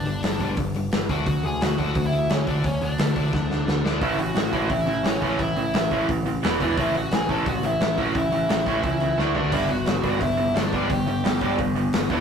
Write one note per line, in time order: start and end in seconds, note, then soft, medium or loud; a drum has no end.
0.00 0.54 D4 medium
0.00 0.53 D5 medium
0.06 0.22 G1 medium
0.06 0.22 G2 medium
0.06 0.22 D3 medium
0.06 open hi-hat medium
0.23 0.56 G1 medium
0.23 0.39 G2 medium
0.23 0.39 D3 medium
0.23 snare loud
0.23 open hi-hat medium
0.40 0.56 G2 medium
0.40 0.57 D3 medium
0.40 0.57 G3 loud
0.40 kick medium
0.40 open hi-hat medium
0.57 0.91 G1 medium
0.57 0.73 G2 medium
0.57 0.74 D3 medium
0.57 kick loud
0.57 open hi-hat medium
0.75 0.91 G2 medium
0.75 0.91 D3 medium
0.75 open hi-hat medium
0.92 1.09 G1 medium
0.92 1.08 G2 medium
0.92 1.08 D3 medium
0.92 snare loud
0.92 open hi-hat medium
1.09 1.26 D2 medium
1.09 1.25 D3 loud
1.09 1.26 A3 medium
1.09 1.26 D4 loud
1.09 1.42 F#4 medium
1.09 1.46 F#5 loud
1.09 kick medium
1.09 open hi-hat medium
1.26 1.43 D2 medium
1.26 1.42 D3 medium
1.26 1.42 A3 medium
1.26 kick loud
1.26 open hi-hat medium
1.44 1.60 D2 loud
1.44 1.59 D3 medium
1.44 1.60 A3 medium
1.44 1.61 G#4 medium
1.44 1.64 G#5 loud
1.44 open hi-hat medium
1.61 1.78 D2 medium
1.61 1.77 D3 medium
1.61 1.77 A3 medium
1.61 1.77 F#4 medium
1.61 1.78 F#5 medium
1.61 snare loud
1.61 open hi-hat medium
1.78 1.94 D2 medium
1.78 1.94 D3 medium
1.78 1.95 A3 loud
1.78 1.95 D4 medium
1.78 2.03 F#4 medium
1.78 2.05 F#5 loud
1.78 kick medium
1.78 open hi-hat medium
1.95 2.28 D2 medium
1.95 2.11 D3 medium
1.95 2.11 A3 medium
1.95 kick loud
1.95 open hi-hat medium
2.05 2.29 E4 medium
2.05 2.32 E5 medium
2.13 2.29 D3 medium
2.13 2.29 A3 medium
2.13 open hi-hat medium
2.30 2.63 D2 medium
2.30 2.45 D3 medium
2.30 2.46 A3 medium
2.30 2.47 C#4 medium
2.30 2.47 C#5 medium
2.30 snare loud
2.30 open hi-hat medium
2.47 2.63 D3 loud
2.47 2.63 A3 medium
2.47 2.64 D4 medium
2.47 2.64 D4 loud
2.47 2.66 D5 medium
2.47 kick loud
2.47 open hi-hat medium
2.64 2.81 D2 loud
2.64 2.80 D3 medium
2.64 2.80 A3 medium
2.64 2.81 C#4 medium
2.64 2.83 C#5 medium
2.64 kick loud
2.64 open hi-hat medium
2.81 2.98 D2 medium
2.81 2.97 D3 medium
2.81 2.97 A3 medium
2.81 3.81 D4 medium
2.81 3.82 D5 medium
2.81 open hi-hat medium
2.98 3.32 D2 medium
2.98 3.15 D3 medium
2.98 3.15 A3 medium
2.98 snare loud
2.98 open hi-hat medium
3.16 3.32 D3 medium
3.16 3.32 A3 medium
3.16 3.33 D4 loud
3.16 kick medium
3.16 open hi-hat medium
3.33 3.66 D2 medium
3.33 3.49 D3 medium
3.33 3.49 A3 medium
3.33 kick loud
3.33 snare medium
3.50 3.65 D3 medium
3.50 3.66 A3 medium
3.50 snare medium
3.67 3.83 D2 medium
3.67 3.83 D3 medium
3.67 3.83 A3 medium
3.67 snare medium
3.84 4.01 D2 medium
3.84 4.01 D3 loud
3.84 4.01 A3 loud
3.84 4.01 D4 loud
3.84 4.01 D4 medium
3.84 4.02 D5 medium
3.84 snare medium
4.01 4.18 A1 medium
4.01 4.17 A2 medium
4.01 4.18 E3 loud
4.01 4.17 A3 medium
4.01 4.19 A3 loud
4.01 4.17 C#4 loud
4.01 4.19 E4 medium
4.01 4.19 E5 medium
4.01 kick loud
4.01 open hi-hat medium
4.18 4.35 A1 medium
4.18 4.34 A2 medium
4.18 4.35 E3 medium
4.18 4.33 A3 medium
4.18 4.34 C#4 medium
4.18 4.68 F#4 medium
4.18 4.70 F#5 medium
4.18 open hi-hat medium
4.34 4.52 A1 medium
4.34 4.52 A2 medium
4.34 4.52 E3 medium
4.34 4.50 A3 medium
4.34 4.51 C#4 medium
4.34 snare loud
4.34 open hi-hat medium
4.51 4.69 A1 medium
4.51 4.70 A2 medium
4.51 4.70 E3 medium
4.51 4.68 A3 medium
4.51 4.70 A3 medium
4.51 4.69 C#4 medium
4.51 4.69 E4 medium
4.51 kick medium
4.51 open hi-hat medium
4.69 5.03 A1 medium
4.69 4.87 A2 medium
4.69 4.87 E3 medium
4.69 4.85 A3 medium
4.69 4.86 C#4 medium
4.69 5.04 E4 medium
4.69 5.07 E5 medium
4.69 kick loud
4.69 open hi-hat medium
4.86 5.04 A2 medium
4.86 5.04 E3 medium
4.86 5.02 A3 medium
4.86 5.03 C#4 medium
4.86 open hi-hat medium
5.03 5.38 A1 medium
5.03 5.21 A2 medium
5.03 5.21 E3 medium
5.03 5.20 A3 medium
5.03 5.20 C#4 medium
5.03 5.38 C#4 medium
5.03 5.41 C#5 medium
5.03 snare loud
5.03 open hi-hat medium
5.21 5.39 A2 loud
5.21 5.39 E3 loud
5.21 5.38 A3 medium
5.21 5.40 A3 loud
5.21 5.38 C#4 loud
5.21 5.39 E4 medium
5.21 kick medium
5.21 open hi-hat medium
5.39 5.56 A1 medium
5.39 5.56 A2 medium
5.39 5.56 E3 medium
5.39 5.55 A3 medium
5.39 5.55 C#4 medium
5.39 6.05 E4 medium
5.39 6.05 E5 medium
5.39 kick loud
5.39 open hi-hat medium
5.56 5.73 A1 medium
5.56 5.73 A2 medium
5.56 5.73 E3 medium
5.56 5.72 A3 medium
5.56 5.72 C#4 medium
5.56 open hi-hat medium
5.74 6.07 A1 medium
5.74 5.90 A2 medium
5.74 5.90 E3 medium
5.74 5.90 A3 medium
5.74 5.90 C#4 medium
5.74 snare loud
5.74 open hi-hat medium
5.91 6.08 A2 medium
5.91 6.08 E3 medium
5.91 6.07 A3 medium
5.91 6.08 A3 loud
5.91 6.07 C#4 loud
5.91 6.08 E4 loud
5.91 kick medium
5.91 open hi-hat medium
6.08 6.42 A1 medium
6.08 6.24 A2 medium
6.08 6.25 E3 medium
6.08 6.24 A3 medium
6.08 6.24 C#4 medium
6.08 kick loud
6.08 open hi-hat medium
6.26 6.41 A2 medium
6.26 6.42 E3 medium
6.26 6.41 A3 medium
6.26 6.42 C#4 medium
6.26 open hi-hat medium
6.42 6.60 E1 medium
6.42 6.59 E2 medium
6.42 6.59 B2 medium
6.42 6.59 E3 medium
6.42 6.60 E3 medium
6.42 6.59 B3 medium
6.42 6.60 E4 medium
6.42 snare loud
6.42 open hi-hat medium
6.60 6.77 E1 medium
6.60 6.77 E2 loud
6.60 6.77 B2 loud
6.60 6.77 E3 medium
6.60 6.77 E3 loud
6.60 6.77 B3 medium
6.60 6.77 D4 medium
6.60 6.77 E4 loud
6.60 6.79 D5 medium
6.60 kick medium
6.60 open hi-hat medium
6.77 6.94 A1 medium
6.77 6.94 A2 medium
6.77 6.94 E3 medium
6.77 6.93 A3 medium
6.77 6.95 A3 medium
6.77 6.94 C#4 medium
6.77 6.94 E4 medium
6.77 6.95 E4 medium
6.77 6.97 E5 medium
6.77 kick loud
6.77 open hi-hat medium
6.94 7.10 A1 medium
6.94 7.11 A2 medium
6.94 7.11 E3 medium
6.94 7.11 A3 medium
6.94 7.11 C#4 medium
6.94 7.12 F#4 medium
6.94 7.12 F#5 loud
6.94 open hi-hat medium
7.11 7.28 A1 medium
7.11 7.28 A2 medium
7.11 7.28 E3 medium
7.11 7.27 A3 medium
7.11 7.27 C#4 medium
7.11 7.29 G#4 medium
7.11 7.29 G#5 loud
7.11 snare loud
7.11 open hi-hat medium
7.29 7.46 A1 medium
7.29 7.46 A2 medium
7.29 7.46 E3 medium
7.29 7.45 A3 medium
7.29 7.46 A3 medium
7.29 7.45 C#4 medium
7.29 7.46 E4 loud
7.29 7.46 A4 medium
7.29 7.48 A5 medium
7.29 kick medium
7.29 open hi-hat medium
7.46 7.79 A1 loud
7.46 7.62 A2 medium
7.46 7.62 E3 medium
7.46 7.62 A3 medium
7.46 7.62 C#4 medium
7.46 7.63 F#4 medium
7.46 7.63 F#5 loud
7.46 kick loud
7.46 open hi-hat medium
7.63 7.79 A2 medium
7.63 7.79 E3 medium
7.63 7.79 A3 medium
7.63 7.79 C#4 medium
7.63 7.96 E4 medium
7.63 8.00 E5 loud
7.63 open hi-hat medium
7.80 8.13 A1 medium
7.80 7.97 A2 medium
7.80 7.97 E3 medium
7.80 7.96 A3 medium
7.80 7.96 C#4 medium
7.80 snare loud
7.80 open hi-hat medium
7.97 8.14 A2 loud
7.97 8.15 E3 medium
7.97 8.14 A3 medium
7.97 8.15 A3 loud
7.97 8.14 C#4 medium
7.97 8.14 E4 medium
7.97 8.15 F#4 medium
7.97 kick medium
7.97 open hi-hat medium
8.01 8.16 F#5 medium
8.15 8.31 A1 medium
8.15 8.31 A2 medium
8.15 8.31 E3 medium
8.15 8.31 A3 medium
8.15 8.31 C#4 medium
8.15 9.33 E4 medium
8.15 9.40 E5 medium
8.15 kick loud
8.15 open hi-hat medium
8.32 8.49 A1 medium
8.32 8.48 A2 medium
8.32 8.48 E3 medium
8.32 8.48 A3 medium
8.32 8.48 C#4 medium
8.32 open hi-hat medium
8.49 8.82 A1 medium
8.49 8.65 A2 medium
8.49 8.65 E3 medium
8.49 8.65 A3 medium
8.49 8.65 C#4 medium
8.49 snare loud
8.49 open hi-hat medium
8.66 8.83 A2 medium
8.66 8.83 E3 medium
8.66 8.83 A3 medium
8.66 8.84 A3 medium
8.66 8.83 C#4 medium
8.66 8.83 E4 medium
8.66 kick medium
8.66 open hi-hat medium
8.83 9.17 C#2 medium
8.83 9.00 A2 medium
8.83 9.00 E3 loud
8.83 9.00 A3 medium
8.83 9.00 C#4 medium
8.83 kick loud
8.83 open hi-hat medium
9.00 9.17 A2 medium
9.00 9.17 E3 medium
9.00 9.17 A3 medium
9.00 9.17 C#4 medium
9.00 open hi-hat medium
9.18 9.34 D2 medium
9.18 9.34 D3 medium
9.18 9.35 A3 medium
9.18 9.35 A3 loud
9.18 9.35 D4 loud
9.18 snare medium
9.35 9.52 D2 medium
9.35 9.51 D3 medium
9.35 9.52 A3 medium
9.35 9.52 A3 loud
9.35 9.52 D4 medium
9.35 9.53 D5 medium
9.35 floor tom medium
9.52 9.69 G1 medium
9.52 9.68 G2 medium
9.52 9.69 D3 medium
9.52 9.68 G3 medium
9.52 9.69 G3 loud
9.52 9.68 B3 medium
9.52 9.69 D4 loud
9.52 9.69 E4 medium
9.52 9.71 E5 medium
9.52 kick loud
9.52 open hi-hat medium
9.52 splash medium
9.69 9.86 G1 medium
9.69 9.85 G2 medium
9.69 9.86 D3 medium
9.69 9.85 G3 medium
9.69 9.85 B3 medium
9.69 10.18 F#4 medium
9.69 10.21 F#5 medium
9.69 open hi-hat medium
9.86 10.03 G1 medium
9.86 10.03 G2 medium
9.86 10.03 D3 medium
9.86 10.01 G3 medium
9.86 10.01 B3 medium
9.86 snare loud
9.86 open hi-hat medium
10.02 10.20 G1 medium
10.02 10.20 G2 medium
10.02 10.21 D3 medium
10.02 10.18 G3 medium
10.02 10.21 G3 loud
10.02 10.18 B3 medium
10.02 10.20 D4 medium
10.02 kick medium
10.02 open hi-hat medium
10.20 10.54 G1 medium
10.20 10.37 G2 medium
10.20 10.37 D3 medium
10.20 10.36 G3 medium
10.20 10.36 B3 medium
10.20 10.54 E4 medium
10.20 10.57 E5 medium
10.20 kick loud
10.20 open hi-hat medium
10.37 10.54 G2 medium
10.37 10.55 D3 medium
10.37 10.53 G3 medium
10.37 10.54 B3 medium
10.37 open hi-hat medium
10.54 10.88 G1 medium
10.54 10.71 G2 medium
10.54 10.71 D3 medium
10.54 10.71 G3 medium
10.54 10.71 B3 medium
10.54 10.88 D4 medium
10.54 10.91 D5 medium
10.54 snare loud
10.54 open hi-hat medium
10.72 10.89 G2 medium
10.72 10.89 D3 loud
10.72 10.87 G3 medium
10.72 10.90 G3 loud
10.72 10.88 B3 medium
10.72 10.89 D4 loud
10.72 kick medium
10.72 open hi-hat medium
10.88 11.06 G1 medium
10.88 11.06 G2 medium
10.88 11.06 D3 medium
10.88 11.05 G3 medium
10.88 11.05 B3 medium
10.88 11.55 G4 medium
10.88 11.55 G5 medium
10.88 kick loud
10.88 open hi-hat medium
11.07 11.23 G1 medium
11.07 11.23 G2 medium
11.07 11.23 D3 medium
11.07 11.22 G3 medium
11.07 11.23 B3 medium
11.07 open hi-hat medium
11.24 11.57 G1 medium
11.24 11.40 G2 medium
11.24 11.40 D3 medium
11.24 11.40 G3 medium
11.24 11.40 B3 medium
11.24 snare loud
11.24 open hi-hat medium
11.41 11.58 G2 medium
11.41 11.58 D3 medium
11.41 11.58 G3 medium
11.41 11.58 B3 medium
11.41 11.58 D4 medium
11.41 kick medium
11.41 open hi-hat medium
11.59 11.91 G1 medium
11.59 11.74 G2 medium
11.59 11.75 D3 medium
11.59 11.74 G3 medium
11.59 11.74 B3 medium
11.59 kick loud
11.59 open hi-hat medium
11.76 11.92 G2 medium
11.76 11.92 D3 medium
11.76 11.91 G3 medium
11.76 11.92 B3 medium
11.76 open hi-hat medium
11.93 12.09 G1 medium
11.93 12.09 G2 medium
11.93 12.09 D3 medium
11.93 12.09 G3 medium
11.93 12.09 B3 medium
11.93 snare loud
11.93 open hi-hat medium
12.10 12.20 E1 medium
12.10 12.20 E2 medium
12.10 12.20 B2 loud
12.10 12.20 E3 medium
12.10 12.20 E3 loud
12.10 12.20 B3 medium
12.10 12.20 D4 medium
12.10 12.20 E4 loud
12.10 12.20 D5 medium
12.10 kick medium
12.10 open hi-hat medium